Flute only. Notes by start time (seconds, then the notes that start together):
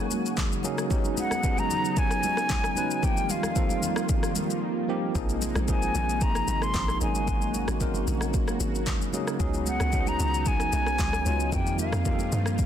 Already playing: G#5
1.19 F#5
1.59 A#5
1.98 G#5
3.04 G5
3.31 F5
5.70 G#5
6.23 A#5
6.63 C6
7.02 G#5
9.67 F#5
10.08 A#5
10.48 G#5
11.54 G5
11.80 F5